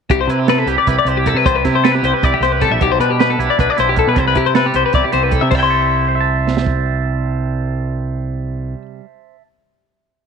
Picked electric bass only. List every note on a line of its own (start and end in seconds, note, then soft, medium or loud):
0.10 0.27 C2 medium
0.27 0.63 C3 medium
0.66 0.76 C2 medium
0.87 0.96 C2 medium
1.05 1.32 C2 medium
1.34 1.44 C3 medium
1.46 1.63 C2 medium
1.65 2.00 C3 medium
2.03 2.12 C2 medium
2.23 2.32 C2 medium
2.40 2.67 C2 medium
2.70 2.80 A#1 medium
2.81 2.99 B1 medium
2.99 3.35 B2 medium
3.38 3.48 B1 medium
3.59 3.68 B1 medium
3.79 4.04 B1 medium
4.07 4.16 B2 medium
4.16 4.34 C2 medium
4.36 4.70 C3 medium
4.74 4.83 C2 medium
4.93 5.02 C2 medium
5.13 5.39 C2 medium
5.42 5.50 C3 medium
5.51 8.74 C2 medium